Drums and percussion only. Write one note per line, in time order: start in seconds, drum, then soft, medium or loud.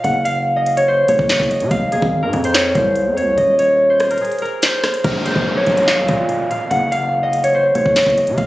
0.04 closed hi-hat medium
0.25 closed hi-hat medium
0.66 closed hi-hat medium
0.77 closed hi-hat medium
1.08 closed hi-hat medium
1.19 kick loud
1.29 snare loud
1.29 clap medium
1.29 closed hi-hat medium
1.36 kick loud
1.36 closed hi-hat medium
1.43 closed hi-hat soft
1.51 closed hi-hat medium
1.60 closed hi-hat medium
1.71 kick loud
1.71 closed hi-hat medium
1.92 closed hi-hat medium
2.02 kick medium
2.33 closed hi-hat medium
2.44 closed hi-hat medium
2.54 snare loud
2.54 clap medium
2.75 kick loud
2.75 closed hi-hat medium
2.96 closed hi-hat medium
3.18 closed hi-hat medium
3.38 closed hi-hat medium
3.59 closed hi-hat medium
4.00 cross-stick medium
4.00 closed hi-hat medium
4.11 closed hi-hat medium
4.18 closed hi-hat medium
4.25 closed hi-hat medium
4.32 closed hi-hat medium
4.39 closed hi-hat medium
4.45 closed hi-hat medium
4.62 snare loud
4.62 clap medium
4.62 closed hi-hat medium
4.84 cross-stick loud
4.84 snare medium
4.84 closed hi-hat medium
4.94 closed hi-hat medium
5.04 kick loud
5.04 closed hi-hat medium
5.26 closed hi-hat medium
5.36 kick medium
5.66 closed hi-hat medium
5.77 closed hi-hat medium
5.88 snare loud
5.88 clap medium
6.08 kick medium
6.08 closed hi-hat medium
6.29 closed hi-hat medium
6.51 closed hi-hat medium
6.71 closed hi-hat medium
6.92 closed hi-hat medium
7.33 closed hi-hat medium
7.44 closed hi-hat medium
7.75 closed hi-hat medium
7.86 kick loud
7.96 snare loud
7.96 clap medium
7.96 closed hi-hat medium
8.03 kick loud
8.03 closed hi-hat medium
8.10 closed hi-hat soft
8.18 closed hi-hat medium
8.27 closed hi-hat medium
8.38 kick loud
8.38 closed hi-hat medium